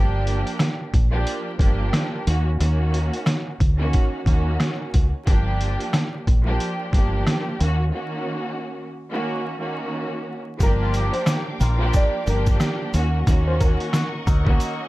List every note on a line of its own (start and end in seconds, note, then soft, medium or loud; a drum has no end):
0.00 0.43 G1 loud
0.00 0.86 F3 medium
0.00 0.87 A#3 medium
0.00 0.87 D4 medium
0.00 0.88 G4 loud
0.27 closed hi-hat medium
0.47 closed hi-hat medium
0.59 cross-stick medium
0.59 snare loud
0.59 closed hi-hat loud
0.94 1.24 A#1 medium
0.94 kick medium
0.94 closed hi-hat medium
1.11 1.56 F3 loud
1.11 1.56 A#3 medium
1.11 1.57 D4 medium
1.11 1.57 G4 loud
1.27 closed hi-hat medium
1.58 1.90 G1 medium
1.58 2.26 F3 medium
1.58 2.26 A#3 medium
1.58 2.27 D4 medium
1.58 2.27 G4 loud
1.58 kick medium
1.58 closed hi-hat medium
1.93 cross-stick medium
1.93 snare loud
1.93 closed hi-hat medium
2.26 2.57 D#2 loud
2.26 2.49 D#3 medium
2.26 2.49 A#3 medium
2.26 2.50 C#4 medium
2.26 2.50 F#4 loud
2.26 closed hi-hat medium
2.58 3.09 D#2 loud
2.58 3.53 D#3 loud
2.58 3.53 A#3 medium
2.58 3.54 C#4 medium
2.58 3.54 F#4 loud
2.58 closed hi-hat medium
2.94 closed hi-hat medium
3.13 closed hi-hat medium
3.26 cross-stick medium
3.26 snare loud
3.26 closed hi-hat loud
3.60 3.91 D2 loud
3.60 kick medium
3.60 closed hi-hat medium
3.79 4.23 D#3 loud
3.79 4.24 A#3 medium
3.79 4.24 C#4 medium
3.79 4.24 F#4 loud
3.93 kick loud
3.93 closed hi-hat medium
4.25 4.57 D#2 medium
4.25 5.05 D#3 loud
4.25 5.05 A#3 medium
4.25 5.06 C#4 medium
4.25 5.06 F#4 loud
4.25 kick medium
4.25 closed hi-hat medium
4.60 cross-stick medium
4.60 snare loud
4.60 closed hi-hat medium
4.94 5.12 C#2 medium
4.94 kick medium
4.94 closed hi-hat medium
5.26 5.76 G1 loud
5.26 6.20 F3 medium
5.26 6.21 A#3 medium
5.26 6.21 D4 medium
5.26 6.21 G4 loud
5.26 kick loud
5.26 closed hi-hat loud
5.61 closed hi-hat medium
5.80 closed hi-hat medium
5.93 cross-stick medium
5.93 snare loud
5.93 closed hi-hat loud
6.27 6.57 A#1 medium
6.27 kick medium
6.27 closed hi-hat medium
6.44 6.89 F3 loud
6.44 6.90 A#3 medium
6.44 6.90 D4 medium
6.44 6.91 G4 loud
6.60 closed hi-hat medium
6.92 7.24 G1 medium
6.92 7.60 F3 medium
6.92 7.59 A#3 medium
6.92 7.60 D4 medium
6.92 7.61 G4 loud
6.92 kick medium
6.92 closed hi-hat medium
7.27 cross-stick medium
7.27 snare loud
7.27 closed hi-hat medium
7.59 7.91 D#2 loud
7.59 7.82 D#3 medium
7.59 7.83 A#3 medium
7.59 7.83 C#4 medium
7.59 7.84 F#4 loud
7.59 closed hi-hat medium
7.92 8.86 D#3 loud
7.92 8.87 A#3 medium
7.92 8.87 C#4 medium
7.92 8.88 F#4 loud
9.12 9.56 D#3 loud
9.12 9.57 A#3 loud
9.12 9.57 C#4 medium
9.12 9.58 F#4 loud
9.59 10.38 D#3 loud
9.59 10.39 A#3 medium
9.59 10.39 C#4 medium
9.59 10.39 F#4 loud
10.60 11.09 G1 loud
10.60 11.54 F3 loud
10.60 11.54 A#3 medium
10.60 11.54 D4 loud
10.60 11.55 G4 loud
10.60 14.88 A#4 medium
10.60 11.12 A#4 loud
10.60 12.91 F5 medium
10.60 12.91 G5 medium
10.60 12.91 D6 medium
10.60 kick loud
10.60 closed hi-hat loud
10.60 shaker medium
10.80 10.91 A#3 medium
10.80 10.91 F4 loud
10.94 11.21 A#3 medium
10.94 11.21 G4 loud
10.94 closed hi-hat medium
10.94 shaker medium
11.13 11.43 C5 medium
11.13 closed hi-hat medium
11.26 11.42 A#3 medium
11.26 11.42 G4 medium
11.26 cross-stick medium
11.26 snare loud
11.26 closed hi-hat loud
11.26 shaker medium
11.59 11.91 A#1 loud
11.59 12.23 G3 medium
11.59 12.23 F4 medium
11.59 12.23 A#4 loud
11.59 snare soft
11.59 closed hi-hat medium
11.59 shaker medium
11.78 12.23 F3 loud
11.78 12.23 A#3 medium
11.78 12.24 D4 loud
11.78 12.24 G4 loud
11.93 12.25 D5 medium
11.93 kick loud
11.93 closed hi-hat medium
11.93 shaker medium
12.25 12.57 G1 medium
12.25 12.93 F3 loud
12.25 12.92 A#3 medium
12.25 12.94 D4 medium
12.25 12.94 G4 loud
12.25 12.78 A#4 medium
12.25 closed hi-hat medium
12.25 shaker medium
12.47 kick medium
12.47 closed hi-hat medium
12.47 shaker medium
12.60 cross-stick medium
12.60 snare loud
12.60 closed hi-hat medium
12.60 shaker medium
12.93 13.24 D#2 loud
12.93 13.16 D#3 medium
12.93 13.16 A#3 medium
12.93 13.16 C#4 medium
12.93 13.17 F#4 loud
12.93 14.88 D#5 medium
12.93 14.88 F#5 medium
12.93 14.88 C#6 medium
12.93 closed hi-hat medium
12.93 shaker medium
13.25 13.76 D#2 loud
13.25 14.20 D#3 loud
13.25 14.20 A#3 medium
13.25 14.21 C#4 medium
13.25 14.21 F#4 loud
13.25 kick loud
13.25 closed hi-hat loud
13.25 shaker medium
13.47 13.58 C#4 medium
13.47 13.58 F4 loud
13.47 13.60 C5 medium
13.60 13.88 C#4 medium
13.60 13.88 F#4 medium
13.60 14.88 A#4 medium
13.60 kick medium
13.60 closed hi-hat medium
13.60 shaker medium
13.80 closed hi-hat medium
13.92 14.08 C#4 medium
13.92 14.08 F#4 loud
13.92 cross-stick medium
13.92 snare loud
13.92 closed hi-hat loud
13.92 shaker medium
14.25 14.57 D2 loud
14.25 14.88 F#3 loud
14.25 14.88 D#4 loud
14.25 14.88 A#4 loud
14.25 kick loud
14.25 closed hi-hat medium
14.25 shaker medium
14.45 14.88 D#3 loud
14.45 14.88 A#3 loud
14.45 14.88 C#4 medium
14.45 14.88 F#4 loud
14.45 kick loud
14.60 closed hi-hat medium
14.60 shaker medium